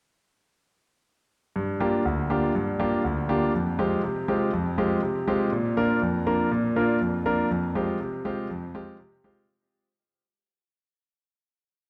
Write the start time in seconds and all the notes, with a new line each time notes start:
1.56 G2
1.80 A#3 D4 F4 G4
2.05 D2
2.30 A#3 D4 F4 G4
2.55 G2
2.80 A#3 D4 F4 G4
3.04 D2
3.29 A#3 D4 F4 G4
3.54 F2
3.79 G#3 C4 F4 G4
4.04 C3
4.28 G#3 C4 F4 G4
4.53 F2
4.78 G#3 C4 F4 G4
5.03 C3
5.28 G#3 C4 F4 G4
5.52 A#2
5.77 A#3 D4 F4 A#4
6.02 F2
6.27 A#3 D4 F4 A#4
6.51 A#2
6.76 A#3 D4 F4 A#4
7.01 F2
7.26 A#3 D4 F4 A#4
7.51 F2
7.75 G#3 C4 F4 G4
8.00 C3
8.25 G#3 C4 F4 G4
8.50 F2
8.75 G#3 C4 F4 G4
8.99 C3
9.24 G#3 C4 F4 G4